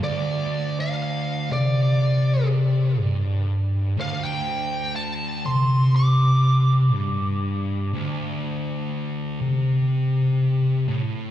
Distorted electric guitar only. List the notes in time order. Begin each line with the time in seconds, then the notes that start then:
0.02 D2
1.51 C3
3.00 G2
3.98 D2
5.46 C3
6.94 G2
7.93 D2
9.41 C3
10.88 A2